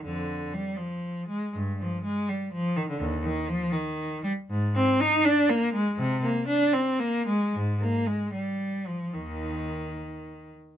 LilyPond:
\new Staff \with { instrumentName = "Cello" } { \clef bass \time 6/8 \key f \dorian \tempo 4. = 79 << { d4 g8 f4 aes8 | g,8 f8 aes8 g8 f8 ees16 d16 | ees,8 ees8 f8 ees4 g8 | \key ees \major aes,8 c'8 ees'8 d'8 bes8 aes8 |
c8 bes8 d'8 c'8 bes8 aes8 | aes,8 bes8 aes8 g4 f8 | ees2~ ees8 r8 | } \\ { f,4 r2 | r2. | r2. | r2. |
r2. | r2. | ees,4. r4. | } >> }